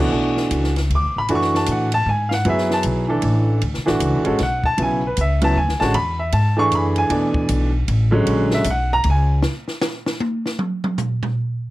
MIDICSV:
0, 0, Header, 1, 4, 480
1, 0, Start_track
1, 0, Tempo, 388350
1, 156, Time_signature, 3, 2, 24, 8
1, 14465, End_track
2, 0, Start_track
2, 0, Title_t, "Grand piano"
2, 0, Program_c, 0, 0
2, 0, Note_on_c, 0, 47, 72
2, 0, Note_on_c, 0, 52, 72
2, 0, Note_on_c, 0, 57, 69
2, 0, Note_on_c, 0, 62, 74
2, 0, Note_on_c, 0, 66, 84
2, 127, Note_off_c, 0, 57, 0
2, 132, Note_off_c, 0, 52, 0
2, 137, Note_off_c, 0, 62, 0
2, 144, Note_off_c, 0, 66, 0
2, 145, Note_on_c, 0, 57, 54
2, 151, Note_on_c, 0, 52, 53
2, 155, Note_on_c, 0, 62, 54
2, 162, Note_on_c, 0, 66, 55
2, 594, Note_off_c, 0, 47, 0
2, 874, Note_off_c, 0, 57, 0
2, 877, Note_off_c, 0, 52, 0
2, 879, Note_off_c, 0, 62, 0
2, 883, Note_off_c, 0, 66, 0
2, 1177, Note_on_c, 0, 86, 83
2, 1443, Note_off_c, 0, 86, 0
2, 1462, Note_on_c, 0, 83, 93
2, 1596, Note_on_c, 0, 52, 59
2, 1601, Note_on_c, 0, 57, 56
2, 1606, Note_on_c, 0, 62, 57
2, 1611, Note_off_c, 0, 83, 0
2, 1615, Note_on_c, 0, 66, 71
2, 1671, Note_on_c, 0, 85, 102
2, 1930, Note_off_c, 0, 85, 0
2, 1933, Note_on_c, 0, 81, 81
2, 2086, Note_off_c, 0, 81, 0
2, 2122, Note_on_c, 0, 78, 69
2, 2319, Note_off_c, 0, 52, 0
2, 2322, Note_off_c, 0, 57, 0
2, 2324, Note_off_c, 0, 62, 0
2, 2329, Note_off_c, 0, 66, 0
2, 2395, Note_off_c, 0, 78, 0
2, 2399, Note_on_c, 0, 81, 112
2, 2558, Note_off_c, 0, 81, 0
2, 2585, Note_on_c, 0, 80, 83
2, 2831, Note_on_c, 0, 77, 65
2, 2853, Note_off_c, 0, 77, 0
2, 2866, Note_off_c, 0, 80, 0
2, 2888, Note_on_c, 0, 78, 88
2, 3028, Note_on_c, 0, 54, 66
2, 3030, Note_on_c, 0, 59, 55
2, 3043, Note_off_c, 0, 78, 0
2, 3043, Note_on_c, 0, 64, 51
2, 3049, Note_on_c, 0, 68, 65
2, 3084, Note_on_c, 0, 76, 81
2, 3356, Note_off_c, 0, 76, 0
2, 3377, Note_on_c, 0, 81, 93
2, 3470, Note_off_c, 0, 81, 0
2, 3755, Note_off_c, 0, 54, 0
2, 3756, Note_off_c, 0, 59, 0
2, 3763, Note_off_c, 0, 64, 0
2, 3765, Note_off_c, 0, 68, 0
2, 3811, Note_on_c, 0, 52, 60
2, 3823, Note_on_c, 0, 57, 59
2, 3824, Note_on_c, 0, 62, 60
2, 3832, Note_on_c, 0, 69, 74
2, 4434, Note_off_c, 0, 52, 0
2, 4440, Note_off_c, 0, 57, 0
2, 4441, Note_off_c, 0, 62, 0
2, 4444, Note_off_c, 0, 69, 0
2, 4769, Note_on_c, 0, 52, 75
2, 4772, Note_on_c, 0, 57, 65
2, 4776, Note_on_c, 0, 62, 63
2, 4787, Note_on_c, 0, 66, 80
2, 5223, Note_off_c, 0, 52, 0
2, 5224, Note_off_c, 0, 57, 0
2, 5226, Note_off_c, 0, 62, 0
2, 5232, Note_off_c, 0, 66, 0
2, 5245, Note_on_c, 0, 56, 62
2, 5249, Note_on_c, 0, 61, 65
2, 5255, Note_on_c, 0, 66, 63
2, 5267, Note_on_c, 0, 69, 70
2, 5408, Note_off_c, 0, 56, 0
2, 5410, Note_off_c, 0, 61, 0
2, 5413, Note_off_c, 0, 66, 0
2, 5419, Note_off_c, 0, 69, 0
2, 5473, Note_on_c, 0, 78, 90
2, 5750, Note_off_c, 0, 78, 0
2, 5754, Note_on_c, 0, 81, 108
2, 5903, Note_on_c, 0, 54, 42
2, 5906, Note_on_c, 0, 49, 52
2, 5915, Note_off_c, 0, 81, 0
2, 5915, Note_on_c, 0, 59, 45
2, 5916, Note_on_c, 0, 64, 50
2, 5964, Note_on_c, 0, 80, 83
2, 6182, Note_off_c, 0, 54, 0
2, 6184, Note_off_c, 0, 49, 0
2, 6189, Note_off_c, 0, 59, 0
2, 6189, Note_off_c, 0, 64, 0
2, 6235, Note_off_c, 0, 80, 0
2, 6266, Note_on_c, 0, 71, 66
2, 6411, Note_off_c, 0, 71, 0
2, 6439, Note_on_c, 0, 76, 79
2, 6691, Note_on_c, 0, 49, 60
2, 6698, Note_on_c, 0, 54, 63
2, 6701, Note_on_c, 0, 59, 63
2, 6713, Note_off_c, 0, 76, 0
2, 6718, Note_on_c, 0, 64, 71
2, 6726, Note_on_c, 0, 81, 108
2, 6851, Note_off_c, 0, 49, 0
2, 6855, Note_off_c, 0, 54, 0
2, 6856, Note_off_c, 0, 59, 0
2, 6865, Note_off_c, 0, 64, 0
2, 6881, Note_off_c, 0, 81, 0
2, 6890, Note_on_c, 0, 80, 82
2, 7168, Note_on_c, 0, 81, 105
2, 7178, Note_off_c, 0, 80, 0
2, 7184, Note_on_c, 0, 56, 60
2, 7186, Note_on_c, 0, 50, 68
2, 7198, Note_on_c, 0, 61, 60
2, 7199, Note_on_c, 0, 66, 81
2, 7337, Note_off_c, 0, 56, 0
2, 7339, Note_off_c, 0, 50, 0
2, 7342, Note_off_c, 0, 81, 0
2, 7345, Note_off_c, 0, 61, 0
2, 7345, Note_off_c, 0, 66, 0
2, 7351, Note_on_c, 0, 83, 110
2, 7648, Note_off_c, 0, 83, 0
2, 7657, Note_on_c, 0, 76, 70
2, 7826, Note_off_c, 0, 76, 0
2, 7826, Note_on_c, 0, 81, 92
2, 8116, Note_on_c, 0, 52, 71
2, 8117, Note_on_c, 0, 57, 65
2, 8125, Note_off_c, 0, 81, 0
2, 8130, Note_on_c, 0, 68, 80
2, 8134, Note_on_c, 0, 62, 64
2, 8148, Note_on_c, 0, 85, 120
2, 8312, Note_off_c, 0, 85, 0
2, 8346, Note_on_c, 0, 83, 87
2, 8626, Note_off_c, 0, 83, 0
2, 8628, Note_on_c, 0, 80, 96
2, 8746, Note_off_c, 0, 52, 0
2, 8746, Note_off_c, 0, 57, 0
2, 8753, Note_off_c, 0, 68, 0
2, 8755, Note_off_c, 0, 62, 0
2, 8773, Note_on_c, 0, 47, 60
2, 8773, Note_on_c, 0, 52, 57
2, 8777, Note_on_c, 0, 57, 55
2, 8787, Note_on_c, 0, 62, 66
2, 9231, Note_off_c, 0, 80, 0
2, 9507, Note_off_c, 0, 47, 0
2, 9507, Note_off_c, 0, 52, 0
2, 9509, Note_off_c, 0, 57, 0
2, 9514, Note_off_c, 0, 62, 0
2, 10025, Note_on_c, 0, 50, 80
2, 10037, Note_on_c, 0, 54, 77
2, 10040, Note_on_c, 0, 61, 88
2, 10041, Note_on_c, 0, 56, 70
2, 10557, Note_on_c, 0, 76, 89
2, 10660, Note_off_c, 0, 50, 0
2, 10666, Note_off_c, 0, 54, 0
2, 10668, Note_off_c, 0, 56, 0
2, 10668, Note_off_c, 0, 61, 0
2, 10716, Note_off_c, 0, 76, 0
2, 10759, Note_on_c, 0, 78, 88
2, 11033, Note_off_c, 0, 78, 0
2, 11038, Note_on_c, 0, 82, 126
2, 11197, Note_off_c, 0, 82, 0
2, 11247, Note_on_c, 0, 80, 86
2, 11586, Note_off_c, 0, 80, 0
2, 14465, End_track
3, 0, Start_track
3, 0, Title_t, "Upright bass"
3, 0, Program_c, 1, 32
3, 0, Note_on_c, 1, 37, 101
3, 141, Note_off_c, 1, 37, 0
3, 151, Note_on_c, 1, 35, 66
3, 618, Note_off_c, 1, 35, 0
3, 629, Note_on_c, 1, 37, 82
3, 1097, Note_off_c, 1, 37, 0
3, 1111, Note_on_c, 1, 38, 85
3, 1279, Note_on_c, 1, 35, 54
3, 1297, Note_off_c, 1, 38, 0
3, 1431, Note_off_c, 1, 35, 0
3, 1438, Note_on_c, 1, 33, 67
3, 1585, Note_off_c, 1, 33, 0
3, 1597, Note_on_c, 1, 42, 71
3, 2061, Note_off_c, 1, 42, 0
3, 2073, Note_on_c, 1, 45, 88
3, 2539, Note_off_c, 1, 45, 0
3, 2545, Note_on_c, 1, 44, 86
3, 3015, Note_off_c, 1, 44, 0
3, 3029, Note_on_c, 1, 42, 78
3, 3496, Note_off_c, 1, 42, 0
3, 3515, Note_on_c, 1, 35, 84
3, 3980, Note_off_c, 1, 35, 0
3, 3996, Note_on_c, 1, 33, 93
3, 4460, Note_off_c, 1, 33, 0
3, 4474, Note_on_c, 1, 38, 72
3, 4636, Note_on_c, 1, 35, 60
3, 4654, Note_off_c, 1, 38, 0
3, 4784, Note_off_c, 1, 35, 0
3, 4791, Note_on_c, 1, 33, 66
3, 4938, Note_off_c, 1, 33, 0
3, 4945, Note_on_c, 1, 37, 89
3, 5114, Note_off_c, 1, 37, 0
3, 5114, Note_on_c, 1, 35, 51
3, 5260, Note_off_c, 1, 35, 0
3, 5268, Note_on_c, 1, 33, 67
3, 5419, Note_off_c, 1, 33, 0
3, 5435, Note_on_c, 1, 35, 87
3, 5899, Note_off_c, 1, 35, 0
3, 5914, Note_on_c, 1, 35, 74
3, 6379, Note_off_c, 1, 35, 0
3, 6397, Note_on_c, 1, 37, 89
3, 6860, Note_off_c, 1, 37, 0
3, 6867, Note_on_c, 1, 38, 83
3, 7021, Note_on_c, 1, 37, 58
3, 7040, Note_off_c, 1, 38, 0
3, 7178, Note_off_c, 1, 37, 0
3, 7185, Note_on_c, 1, 33, 72
3, 7337, Note_off_c, 1, 33, 0
3, 7343, Note_on_c, 1, 40, 82
3, 7813, Note_off_c, 1, 40, 0
3, 7822, Note_on_c, 1, 44, 93
3, 8292, Note_off_c, 1, 44, 0
3, 8297, Note_on_c, 1, 42, 85
3, 8766, Note_off_c, 1, 42, 0
3, 8774, Note_on_c, 1, 40, 79
3, 9248, Note_off_c, 1, 40, 0
3, 9261, Note_on_c, 1, 35, 97
3, 9732, Note_off_c, 1, 35, 0
3, 9740, Note_on_c, 1, 33, 98
3, 10196, Note_off_c, 1, 33, 0
3, 10203, Note_on_c, 1, 34, 84
3, 10682, Note_off_c, 1, 34, 0
3, 10692, Note_on_c, 1, 35, 98
3, 11167, Note_off_c, 1, 35, 0
3, 11179, Note_on_c, 1, 37, 94
3, 11651, Note_off_c, 1, 37, 0
3, 14465, End_track
4, 0, Start_track
4, 0, Title_t, "Drums"
4, 457, Note_on_c, 9, 38, 34
4, 581, Note_off_c, 9, 38, 0
4, 626, Note_on_c, 9, 44, 67
4, 626, Note_on_c, 9, 51, 78
4, 750, Note_off_c, 9, 44, 0
4, 750, Note_off_c, 9, 51, 0
4, 788, Note_on_c, 9, 38, 29
4, 912, Note_off_c, 9, 38, 0
4, 941, Note_on_c, 9, 51, 44
4, 951, Note_on_c, 9, 38, 39
4, 1065, Note_off_c, 9, 51, 0
4, 1074, Note_off_c, 9, 38, 0
4, 1118, Note_on_c, 9, 51, 59
4, 1242, Note_off_c, 9, 51, 0
4, 1588, Note_on_c, 9, 51, 60
4, 1711, Note_off_c, 9, 51, 0
4, 1750, Note_on_c, 9, 38, 27
4, 1873, Note_off_c, 9, 38, 0
4, 1910, Note_on_c, 9, 38, 41
4, 2034, Note_off_c, 9, 38, 0
4, 2055, Note_on_c, 9, 44, 61
4, 2055, Note_on_c, 9, 51, 83
4, 2179, Note_off_c, 9, 44, 0
4, 2179, Note_off_c, 9, 51, 0
4, 2370, Note_on_c, 9, 51, 68
4, 2494, Note_off_c, 9, 51, 0
4, 2857, Note_on_c, 9, 38, 50
4, 2981, Note_off_c, 9, 38, 0
4, 3026, Note_on_c, 9, 51, 60
4, 3149, Note_off_c, 9, 51, 0
4, 3188, Note_on_c, 9, 38, 29
4, 3311, Note_off_c, 9, 38, 0
4, 3343, Note_on_c, 9, 38, 47
4, 3466, Note_off_c, 9, 38, 0
4, 3497, Note_on_c, 9, 44, 65
4, 3497, Note_on_c, 9, 51, 76
4, 3621, Note_off_c, 9, 44, 0
4, 3621, Note_off_c, 9, 51, 0
4, 3978, Note_on_c, 9, 51, 63
4, 4102, Note_off_c, 9, 51, 0
4, 4469, Note_on_c, 9, 51, 59
4, 4592, Note_off_c, 9, 51, 0
4, 4624, Note_on_c, 9, 38, 27
4, 4748, Note_off_c, 9, 38, 0
4, 4783, Note_on_c, 9, 38, 44
4, 4906, Note_off_c, 9, 38, 0
4, 4947, Note_on_c, 9, 44, 78
4, 4947, Note_on_c, 9, 51, 87
4, 5071, Note_off_c, 9, 44, 0
4, 5071, Note_off_c, 9, 51, 0
4, 5250, Note_on_c, 9, 51, 49
4, 5373, Note_off_c, 9, 51, 0
4, 5421, Note_on_c, 9, 38, 37
4, 5421, Note_on_c, 9, 51, 64
4, 5545, Note_off_c, 9, 38, 0
4, 5545, Note_off_c, 9, 51, 0
4, 5730, Note_on_c, 9, 36, 56
4, 5854, Note_off_c, 9, 36, 0
4, 5906, Note_on_c, 9, 51, 65
4, 6029, Note_off_c, 9, 51, 0
4, 6386, Note_on_c, 9, 44, 59
4, 6386, Note_on_c, 9, 51, 80
4, 6509, Note_off_c, 9, 44, 0
4, 6509, Note_off_c, 9, 51, 0
4, 6693, Note_on_c, 9, 51, 73
4, 6817, Note_off_c, 9, 51, 0
4, 7030, Note_on_c, 9, 38, 30
4, 7154, Note_off_c, 9, 38, 0
4, 7183, Note_on_c, 9, 38, 47
4, 7306, Note_off_c, 9, 38, 0
4, 7344, Note_on_c, 9, 51, 69
4, 7467, Note_off_c, 9, 51, 0
4, 7817, Note_on_c, 9, 51, 77
4, 7940, Note_off_c, 9, 51, 0
4, 8301, Note_on_c, 9, 44, 51
4, 8301, Note_on_c, 9, 51, 67
4, 8424, Note_off_c, 9, 44, 0
4, 8424, Note_off_c, 9, 51, 0
4, 8599, Note_on_c, 9, 51, 51
4, 8722, Note_off_c, 9, 51, 0
4, 8775, Note_on_c, 9, 51, 73
4, 8898, Note_off_c, 9, 51, 0
4, 9077, Note_on_c, 9, 36, 76
4, 9201, Note_off_c, 9, 36, 0
4, 9252, Note_on_c, 9, 44, 73
4, 9252, Note_on_c, 9, 51, 94
4, 9376, Note_off_c, 9, 44, 0
4, 9376, Note_off_c, 9, 51, 0
4, 9738, Note_on_c, 9, 51, 70
4, 9862, Note_off_c, 9, 51, 0
4, 10217, Note_on_c, 9, 51, 69
4, 10340, Note_off_c, 9, 51, 0
4, 10513, Note_on_c, 9, 38, 52
4, 10637, Note_off_c, 9, 38, 0
4, 10683, Note_on_c, 9, 44, 78
4, 10683, Note_on_c, 9, 51, 84
4, 10807, Note_off_c, 9, 44, 0
4, 10807, Note_off_c, 9, 51, 0
4, 11168, Note_on_c, 9, 51, 66
4, 11292, Note_off_c, 9, 51, 0
4, 11650, Note_on_c, 9, 38, 89
4, 11773, Note_off_c, 9, 38, 0
4, 11960, Note_on_c, 9, 38, 38
4, 12084, Note_off_c, 9, 38, 0
4, 12132, Note_on_c, 9, 38, 115
4, 12132, Note_on_c, 9, 44, 62
4, 12255, Note_off_c, 9, 38, 0
4, 12255, Note_off_c, 9, 44, 0
4, 12439, Note_on_c, 9, 38, 89
4, 12563, Note_off_c, 9, 38, 0
4, 12612, Note_on_c, 9, 48, 96
4, 12736, Note_off_c, 9, 48, 0
4, 12924, Note_on_c, 9, 38, 50
4, 13048, Note_off_c, 9, 38, 0
4, 13087, Note_on_c, 9, 47, 93
4, 13211, Note_off_c, 9, 47, 0
4, 13397, Note_on_c, 9, 47, 96
4, 13521, Note_off_c, 9, 47, 0
4, 13571, Note_on_c, 9, 43, 100
4, 13571, Note_on_c, 9, 44, 65
4, 13695, Note_off_c, 9, 43, 0
4, 13695, Note_off_c, 9, 44, 0
4, 13876, Note_on_c, 9, 43, 91
4, 13999, Note_off_c, 9, 43, 0
4, 14465, End_track
0, 0, End_of_file